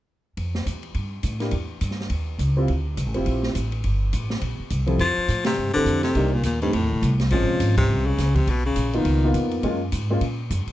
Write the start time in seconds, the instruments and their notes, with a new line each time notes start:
0.37 upright bass F2, kick, ride
0.55 snare
0.66 upright bass E2, kick, hi-hat pedal, ride
0.83 ride
0.94 upright bass G2, kick, ride
1.23 upright bass A2, kick, hi-hat pedal, ride
1.40 grand piano A#3 D4 E4 G4, snare, ride
1.51 upright bass E2, kick, ride
1.81 upright bass G2, kick, hi-hat pedal, ride
1.91 snare
2.01 snare
2.10 upright bass D#2, kick, ride
2.39 upright bass C#2, kick, hi-hat pedal, ride
2.57 grand piano C4 E4 F4 G4
2.68 upright bass D2, kick, ride
2.97 upright bass C2, kick, hi-hat pedal, ride
3.06 upright bass A1
3.14 upright bass F1, grand piano C4 E4 F4 G4, ride
3.26 upright bass A#1, kick, ride
3.43 snare
3.55 upright bass A1, kick, hi-hat pedal, ride
3.72 ride
3.84 upright bass G1, kick, ride
4.13 upright bass A1, kick, hi-hat pedal, ride
4.30 snare
4.41 upright bass A#1, kick, ride
4.59 muted upright bass stroke
4.70 upright bass C2, kick, hi-hat pedal, ride
4.86 grand piano F3 C4 E4 G4 A4, ride
4.99 upright bass F2, baritone saxophone F3, kick, ride
5.17 muted upright bass stroke
5.28 upright bass A2, kick, hi-hat pedal, ride
5.44 baritone saxophone C3, snare, ride
5.58 upright bass G2
5.74 baritone saxophone D3, grand piano C4 E4 G4 A4, muted upright bass stroke
5.85 upright bass F2, kick, hi-hat pedal, ride
6.03 baritone saxophone C3, snare, ride
6.15 upright bass C2, grand piano A#3 D4 D#4 G4, kick, ride
6.33 baritone saxophone A#2
6.43 upright bass D#2, baritone saxophone A#2, kick, hi-hat pedal, ride
6.62 baritone saxophone G2, grand piano A3 C4 D#4 G4, ride
6.73 upright bass F2, baritone saxophone A2, kick, ride
6.83 upright bass D#2
6.93 upright bass C2
7.02 upright bass C2, kick, hi-hat pedal, ride
7.20 snare, ride
7.30 upright bass A#1, baritone saxophone F3, grand piano G#3 C4 C#4, kick, ride
7.34 grand piano F4
7.41 upright bass G#1
7.50 upright bass F1
7.60 upright bass G#1, kick, hi-hat pedal, ride
7.77 baritone saxophone C3, kick, ride
7.89 upright bass C2
8.06 baritone saxophone C#3
8.18 upright bass C#2, kick, snare, hi-hat pedal, ride
8.35 baritone saxophone C3, kick, ride
8.47 upright bass B1, baritone saxophone B2, kick, ride
8.66 baritone saxophone C#3
8.76 upright bass A#1, kick, hi-hat pedal, ride
8.93 baritone saxophone D#3, grand piano A#3 B3 D#4 F4, ride
9.05 upright bass C#2, kick, ride
9.24 grand piano A#3 B3 D#4 F4
9.34 upright bass F2, kick, hi-hat pedal, ride
9.51 ride
9.63 upright bass F#2, grand piano G#3 A#3 C#4 F4, kick, ride
9.92 upright bass G#2, kick, hi-hat pedal, ride
10.10 grand piano G#3 A#3 C#4 F4
10.21 upright bass A#2, kick, ride
10.50 upright bass F#2, kick, hi-hat pedal, ride
10.67 muted upright bass stroke, ride